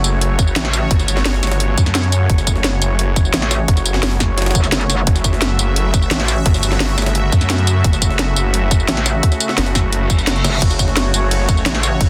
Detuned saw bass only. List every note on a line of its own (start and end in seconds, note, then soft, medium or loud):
0.04 0.55 F#1 medium
0.91 1.76 G1 loud
1.78 2.28 F#2 loud
2.30 2.80 F#1 loud
2.82 3.32 F#1 loud
3.68 4.54 F#1 loud
5.07 5.58 F#1 loud
5.59 6.10 F#1 medium
6.46 7.31 G1 loud
7.32 7.83 F#2 loud
7.84 8.35 F#1 loud
8.36 8.87 F#1 medium
9.58 10.43 F#1 loud
10.62 11.13 F#1 loud
11.14 11.65 F#1 medium
12.01 12.09 G1 medium